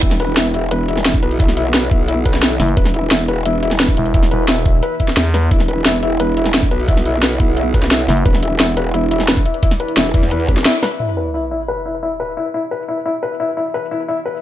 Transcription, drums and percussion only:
0.03 kick loud
0.03 closed hi-hat medium
0.11 snare soft
0.20 closed hi-hat medium
0.37 snare loud
0.37 closed hi-hat medium
0.54 closed hi-hat medium
0.71 closed hi-hat loud
0.88 closed hi-hat medium
0.97 snare soft
1.06 snare loud
1.06 closed hi-hat loud
1.14 kick loud
1.23 closed hi-hat medium
1.31 closed hi-hat soft
1.40 kick loud
1.40 closed hi-hat loud
1.48 snare soft
1.57 closed hi-hat medium
1.74 snare loud
1.74 closed hi-hat medium
1.91 kick loud
1.91 closed hi-hat medium
2.08 closed hi-hat medium
2.25 kick medium
2.25 closed hi-hat medium
2.34 snare soft
2.43 snare loud
2.43 closed hi-hat medium
2.60 snare medium
2.60 closed hi-hat medium
2.68 closed hi-hat soft
2.77 kick loud
2.77 closed hi-hat medium
2.85 snare soft
2.94 closed hi-hat medium
3.11 snare loud
3.11 closed hi-hat medium
3.28 closed hi-hat medium
3.46 closed hi-hat medium
3.63 closed hi-hat medium
3.71 snare medium
3.80 snare loud
3.80 closed hi-hat medium
3.88 kick loud
3.97 closed hi-hat medium
4.06 closed hi-hat soft
4.14 kick loud
4.14 closed hi-hat medium
4.23 snare soft
4.31 closed hi-hat medium
4.48 snare loud
4.48 closed hi-hat medium
4.66 kick loud
4.66 closed hi-hat medium
4.83 closed hi-hat medium
5.00 kick medium
5.00 closed hi-hat medium
5.08 snare soft
5.17 snare loud
5.17 closed hi-hat medium
5.34 snare medium
5.34 closed hi-hat medium
5.43 closed hi-hat soft
5.51 kick loud
5.51 closed hi-hat medium
5.60 snare soft
5.68 closed hi-hat medium
5.86 snare loud
5.86 closed hi-hat medium
6.03 closed hi-hat medium
6.20 closed hi-hat medium
6.37 closed hi-hat medium
6.46 snare soft
6.54 snare loud
6.54 closed hi-hat medium
6.63 kick loud
6.71 closed hi-hat medium
6.80 closed hi-hat soft
6.88 kick loud
6.88 closed hi-hat medium
6.97 snare soft
7.05 closed hi-hat medium
7.23 snare loud
7.23 closed hi-hat medium
7.40 kick loud
7.40 closed hi-hat medium
7.57 closed hi-hat medium
7.74 kick medium
7.74 closed hi-hat medium
7.83 snare soft
7.91 snare loud
7.91 closed hi-hat medium
8.08 snare medium
8.08 closed hi-hat medium
8.17 closed hi-hat soft
8.26 kick loud
8.26 closed hi-hat medium
8.34 snare soft
8.43 closed hi-hat medium
8.60 snare loud
8.60 closed hi-hat medium
8.77 closed hi-hat medium
8.94 closed hi-hat medium
9.11 closed hi-hat medium
9.20 snare soft
9.28 snare loud
9.28 closed hi-hat loud
9.37 kick loud
9.46 closed hi-hat medium
9.54 closed hi-hat soft
9.63 kick loud
9.63 closed hi-hat loud
9.71 snare soft
9.71 closed hi-hat soft
9.80 closed hi-hat medium
9.88 closed hi-hat soft
9.97 snare loud
9.97 closed hi-hat medium
10.14 kick loud
10.14 closed hi-hat medium
10.23 snare soft
10.31 closed hi-hat loud
10.40 closed hi-hat soft
10.48 kick medium
10.48 closed hi-hat medium
10.57 snare soft
10.65 snare loud
10.65 closed hi-hat loud
10.83 snare medium
10.83 closed hi-hat medium
10.91 closed hi-hat soft

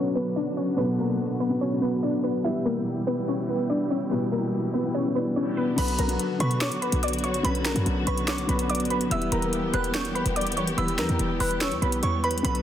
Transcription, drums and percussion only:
5.78 closed hi-hat medium
5.78 crash loud
5.88 closed hi-hat medium
5.99 closed hi-hat loud
6.09 closed hi-hat medium
6.19 closed hi-hat medium
6.40 closed hi-hat medium
6.51 closed hi-hat medium
6.61 finger snap loud
6.61 snare loud
6.61 closed hi-hat medium
6.72 closed hi-hat medium
6.82 closed hi-hat medium
6.92 closed hi-hat medium
7.03 closed hi-hat medium
7.08 closed hi-hat medium
7.13 closed hi-hat medium
7.19 closed hi-hat soft
7.24 closed hi-hat medium
7.34 closed hi-hat medium
7.45 closed hi-hat medium
7.55 closed hi-hat medium
7.65 finger snap medium
7.65 snare loud
7.65 closed hi-hat medium
7.76 closed hi-hat medium
7.86 closed hi-hat medium
8.07 closed hi-hat medium
8.17 closed hi-hat medium
8.27 finger snap loud
8.27 snare loud
8.27 closed hi-hat medium
8.38 closed hi-hat medium
8.49 closed hi-hat medium
8.59 closed hi-hat medium
8.70 closed hi-hat medium
8.75 closed hi-hat medium
8.80 closed hi-hat medium
8.85 closed hi-hat soft
8.90 closed hi-hat medium
9.01 closed hi-hat medium
9.11 closed hi-hat medium
9.22 closed hi-hat medium
9.32 closed hi-hat medium
9.42 closed hi-hat medium
9.53 closed hi-hat medium
9.74 closed hi-hat medium
9.84 closed hi-hat medium
9.94 finger snap loud
9.94 snare loud
9.94 closed hi-hat medium
10.05 closed hi-hat medium
10.16 closed hi-hat medium
10.26 closed hi-hat medium
10.36 closed hi-hat medium
10.41 closed hi-hat medium
10.47 closed hi-hat medium
10.52 closed hi-hat soft
10.57 closed hi-hat medium
10.67 closed hi-hat medium
10.78 closed hi-hat medium
10.88 closed hi-hat medium
10.98 finger snap medium
10.98 snare loud
10.98 closed hi-hat loud
11.09 closed hi-hat medium
11.19 closed hi-hat medium
11.40 open hi-hat medium
11.51 closed hi-hat medium
11.61 finger snap loud
11.61 snare loud
11.61 closed hi-hat medium
11.72 closed hi-hat medium
11.82 closed hi-hat medium
11.92 closed hi-hat loud
12.03 closed hi-hat medium
12.24 closed hi-hat soft
12.31 closed hi-hat medium
12.38 closed hi-hat medium
12.45 closed hi-hat loud
12.55 closed hi-hat medium

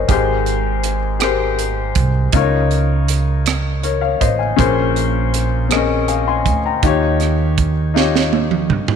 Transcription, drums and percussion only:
0.09 kick medium
0.09 closed hi-hat medium
0.46 closed hi-hat soft
0.84 closed hi-hat medium
1.20 cross-stick medium
1.20 closed hi-hat medium
1.59 closed hi-hat soft
1.95 kick medium
1.95 closed hi-hat medium
2.33 kick medium
2.33 closed hi-hat medium
2.71 closed hi-hat soft
3.08 closed hi-hat medium
3.46 cross-stick medium
3.46 closed hi-hat medium
3.83 closed hi-hat soft
4.21 kick medium
4.21 closed hi-hat medium
4.59 kick medium
4.59 closed hi-hat medium
4.96 closed hi-hat soft
5.34 closed hi-hat medium
5.71 cross-stick medium
5.71 closed hi-hat medium
6.08 closed hi-hat soft
6.46 kick medium
6.46 closed hi-hat soft
6.83 kick medium
6.83 closed hi-hat medium
7.20 cross-stick soft
7.20 closed hi-hat soft
7.58 kick medium
7.58 closed hi-hat medium
7.96 snare soft
8.15 snare soft
8.33 high tom medium
8.51 mid tom soft
8.70 mid tom medium
8.88 floor tom medium

